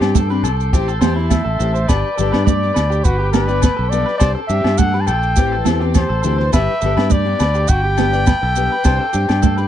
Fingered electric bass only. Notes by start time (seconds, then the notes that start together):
0.01 G2
0.43 C2
0.74 A1
1.01 E2
1.46 A1
1.60 A1
1.90 G1
2.19 G1
2.34 G2
2.77 D2
3.05 G1
3.79 B1
4.21 C2
4.50 G2
4.64 G2
5.08 A#1
5.37 A1
5.66 E2
6.10 A1
6.24 D2
6.54 G1
6.82 G1
6.97 G2
7.40 D2
7.69 G1
8.43 B1
8.85 C2
9.14 G2
9.30 G2